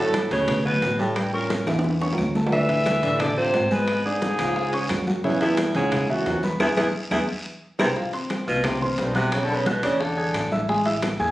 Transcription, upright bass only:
Already playing: G1
0.31 D2
0.82 A1
1.67 E2
2.18 D2
3.03 A1
3.53 G#1
4.39 C#2
4.90 F#2
5.75 C#2
6.26 E2
6.60 E2
6.78 E2
7.11 E2
7.80 C2
8.48 C2
8.98 B1
9.83 E2
10.34 A1
11.20 E2

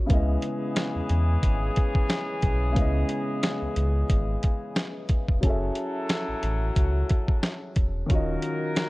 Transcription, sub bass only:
0.10 C#2
0.96 E2
1.10 E2
1.43 G#1
2.43 B1
2.77 C#2
3.62 C#2
3.77 C#2
4.10 G#1
5.29 E1
5.43 F#1
6.29 A1
6.43 A1
6.77 C#2
7.76 E1
8.10 D#1

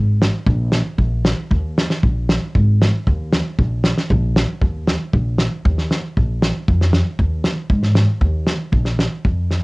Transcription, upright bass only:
Already playing: G#1
0.47 A#1
0.98 A#1
1.51 D#2
2.03 A#1
2.55 G#1
3.07 D#2
3.59 A#1
4.10 A#1
4.61 D#2
5.13 A#1
5.65 D#2
6.17 A#1
6.68 F2
7.19 D#2
7.70 G#2
8.21 D#2
8.72 A#1
9.25 F2

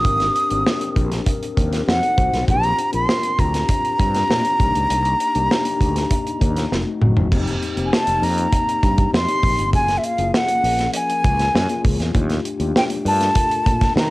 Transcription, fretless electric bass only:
0.05 G#1
0.51 G#1
0.96 A#1
1.57 D#2
1.88 F2
2.18 C2
2.33 B1
2.48 A#1
2.94 A#1
3.39 D2
3.99 G2
4.30 A#2
4.60 C2
4.76 C#2
4.90 C2
5.36 C2
5.81 D2
6.41 D#2
6.72 F1
7.02 F#1
7.16 F#1
7.32 F1
7.77 F1
8.07 F1
8.22 F2
8.83 G2
9.13 F2
9.43 A#1
9.59 G1
9.73 F#1
10.18 F#1
10.64 A#1
11.24 C#2
11.55 F#2
11.85 C#2
11.99 E2
12.15 D#2
12.60 D#2
13.05 G2
13.66 A#2
13.96 D#3

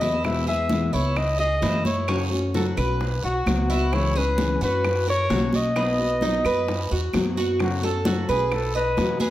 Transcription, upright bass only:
Already playing: E2
0.93 C#2
1.62 F#2
2.77 B1
3.24 B1
3.46 C#2
4.61 F#2
5.30 B1
6.44 F#2
6.91 E2
7.13 F#2
8.29 B1
8.97 E2

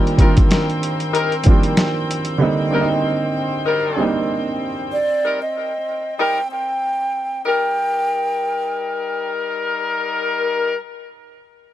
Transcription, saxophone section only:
0.20 G3 D#4 A#4
1.14 G3 D#4 A#4
2.73 G3 D#4 A#4
3.66 G3 D#4 A#4
5.24 G3 D#4 A#4
6.20 G3 D#4 A#4
7.46 G3 D#4 A#4

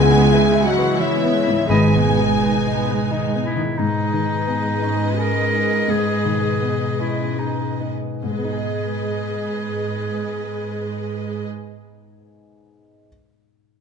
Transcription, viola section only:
Already playing: E4
0.00 G#3
0.16 B3
0.33 G#3
0.49 E3
0.65 C#3
0.82 E3
0.98 G#3
1.15 B3
1.33 G#3
1.49 E3
1.67 D#3 D#4
1.86 G#3
2.04 B3
2.21 G#3
2.38 D#3
2.56 G#3
2.74 B3
2.93 G#3
3.10 D#3
3.27 G#3
3.46 B3
3.62 G#3
3.79 G#3 G#4
8.21 G#3 G#4

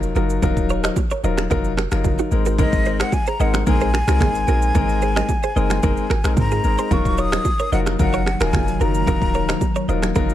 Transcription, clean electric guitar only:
0.16 F#4 A#4
0.43 F#4 A#4
0.70 A#4 C#5
0.84 C5 D#5
1.11 A#4 C#5
1.24 C5 D#5
1.51 F#4 A#4
1.78 F#4 A#4
2.19 D#4 F#4
2.46 F#4 A#4
2.59 D#4 A#4
2.86 G#4 C5
3.01 C5 D#5
3.28 G#4 C5
3.41 C5 D#5
3.81 G#4 C5
4.09 F#4 A#4
4.21 D#4 G#4
4.48 F#4 A#4
4.75 D#4 A#4
5.02 G#4 C5
5.16 C5 D#5
5.44 G#4 C5
5.57 C5 D#5
5.84 D#4 A#4
6.11 F#4 A#4
6.52 F4 G#4
6.79 G#4 C5
6.92 F#4 A#4
7.18 A#4 C#5
7.33 C5 D#5
7.60 A#4 C#5
7.73 C5 D#5
8.14 A#4 C#5
8.41 F#4 A#4
8.54 F4 G#4
8.81 F#4 A#4
9.08 F#4 A#4
9.35 A#4 C#5
9.49 C5 D#5
9.76 A#4 C#5
9.89 C5 D#5
10.16 F#4 A#4

